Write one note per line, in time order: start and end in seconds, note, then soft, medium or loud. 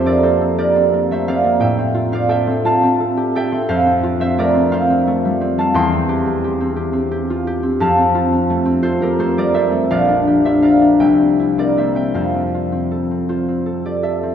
0.00 1.65 F2 medium
0.00 0.57 G4 medium
0.00 0.23 A4 medium
0.00 0.17 C5 medium
0.00 1.11 E5 medium
0.05 0.40 C4 soft
0.05 0.59 A#4 medium
0.05 0.35 D5 medium
0.23 0.92 A#3 soft
0.23 2.28 A4 medium
0.23 1.12 C5 medium
0.41 0.75 C4 soft
0.58 1.65 G4 medium
0.58 1.65 A#4 medium
0.58 1.28 D5 medium
0.76 1.27 C4 soft
0.93 1.43 A#3 medium
1.11 1.40 A3 soft
1.11 3.69 C5 medium
1.11 1.61 E5 medium
1.28 1.77 C4 medium
1.28 1.65 D5 medium
1.28 1.86 F5 medium
1.44 1.64 A#3 medium
1.60 3.70 A2 medium
1.60 2.29 E5 medium
1.60 2.28 G5 medium
1.79 2.11 C4 medium
1.94 2.64 F4 medium
2.12 2.46 C4 medium
2.12 3.72 D5 medium
2.12 2.65 F5 medium
2.29 2.99 A4 medium
2.29 3.36 E5 medium
2.29 2.89 G5 medium
2.47 2.82 C4 medium
2.65 4.02 F4 medium
2.65 3.67 F5 medium
2.65 5.58 A5 medium
2.83 3.51 C4 medium
3.00 3.34 A4 medium
3.17 3.46 G4 medium
3.35 5.76 A4 medium
3.35 3.72 E5 medium
3.35 3.93 G5 loud
3.52 3.85 C4 medium
3.69 5.76 F2 medium
3.69 4.21 C5 medium
3.69 4.70 F5 loud
3.87 4.19 C4 medium
4.03 4.71 F4 medium
4.20 4.54 C4 medium
4.20 4.72 C5 medium
4.20 4.49 E5 medium
4.38 5.06 A3 medium
4.38 5.77 A#4 medium
4.38 4.95 D5 medium
4.55 4.89 C4 medium
4.72 5.76 F4 medium
4.72 8.63 C5 medium
4.72 5.59 F5 medium
4.90 5.40 C4 medium
5.07 5.57 A3 medium
5.25 5.52 G3 medium
5.41 5.91 C4 medium
5.58 5.77 A3 medium
5.58 5.78 F5 medium
5.58 5.86 A5 medium
5.74 7.84 E2 medium
5.74 7.85 G5 medium
5.74 9.65 C6 loud
5.92 6.25 C4 medium
6.09 6.43 G4 medium
6.26 6.59 C4 medium
6.44 6.75 G4 medium
6.61 6.92 C4 medium
6.76 7.10 G4 medium
6.93 7.62 C4 medium
7.11 7.46 G4 medium
7.30 7.59 F4 medium
7.47 7.84 G4 medium
7.63 7.97 C4 medium
7.80 9.93 F2 medium
7.80 9.89 F5 medium
7.80 9.93 A5 medium
7.98 8.31 C4 medium
8.15 8.82 F4 medium
8.33 8.64 C4 soft
8.50 9.17 A3 medium
8.65 8.99 C4 medium
8.82 9.93 F4 medium
8.82 9.19 A4 medium
8.82 9.19 C5 medium
9.00 9.53 C4 soft
9.00 10.26 G4 medium
9.00 9.32 A#4 medium
9.19 9.70 A3 soft
9.19 9.94 A4 medium
9.19 9.50 C5 medium
9.38 9.68 G3 soft
9.38 10.62 A#4 medium
9.38 9.68 D5 medium
9.54 9.93 C4 medium
9.54 9.94 C5 medium
9.54 10.15 E5 medium
9.71 9.93 A3 soft
9.90 11.04 A#1 medium
9.90 10.63 D5 medium
9.90 10.61 F5 medium
10.08 10.44 D4 soft
10.27 12.19 G4 medium
10.45 10.80 D4 soft
10.45 11.78 C5 medium
10.45 10.77 E5 medium
10.62 11.58 A#4 soft
10.62 11.04 D5 soft
10.62 11.27 F5 medium
10.81 11.04 D4 soft
11.00 12.18 C2 medium
11.00 11.76 E5 medium
11.00 11.95 G5 medium
11.19 11.57 C4 soft
11.39 12.19 E4 soft
11.58 11.94 C4 soft
11.58 12.20 A#4 soft
11.58 11.91 D5 medium
11.77 12.19 A#3 soft
11.77 12.15 C5 soft
11.77 11.96 E5 medium
11.95 12.33 C4 soft
11.95 12.19 E5 soft
11.95 12.29 G5 medium
12.14 14.35 F2 medium
12.14 13.28 C5 soft
12.14 14.35 F5 medium
12.34 12.71 C4 soft
12.55 13.28 F4 soft
12.72 13.10 C4 soft
12.91 13.65 A4 soft
13.11 13.47 C4 soft
13.29 14.35 F4 soft
13.29 14.35 C5 medium
13.48 14.22 C4 soft
13.66 14.02 A4 soft
13.85 14.19 G4 soft
13.85 14.19 D5 medium
14.03 14.35 A4 soft
14.03 14.35 E5 medium
14.23 14.35 C4 soft